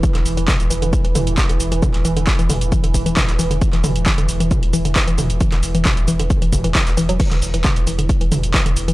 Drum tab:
CC |----------------|----------------|----------------|----------------|
HH |xxoxxxoxxxoxxxox|xxoxxxoxxxoxxxox|xxoxxxoxxxoxxxox|xxoxxxoxxxoxxxox|
SH |x-xxxxxxx-xxxxxx|x-xxxxxxxxxxxxxx|x-xxxxxxx-xxxxxx|x-xxxxxxxxxxxxxx|
CP |-x--x-------x---|-x--x-------xx--|-x--x-------x---|-x--x-------xx--|
T2 |----o-----o-----|o-----o-----o---|--o-----o-----o-|----o-----o-----|
BD |o---o---o---o---|o---o---o-o-o---|o---o---o---o---|o---o---o-o-o---|

CC |x---------------|
HH |xxoxxxoxxxoxxxox|
SH |x-xxxxxxx-xxxxxx|
CP |-x--x-------x---|
T2 |----o-----o-----|
BD |o---o---o---o---|